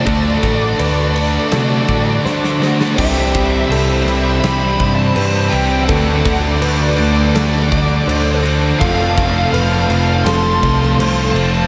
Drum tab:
CC |----------------|x-x-x-x-x-x-x-x-|x-x-x-x-x-x-x-x-|x-x-x-x-x-x-x-x-|
RD |x-x-x-x-x-x-----|----------------|----------------|----------------|
SD |--------o---oooo|--------o-------|--------o-------|--------o--o----|
BD |o-o-------o-----|o-o-------o-----|o-o-------o-----|o-o-------o-----|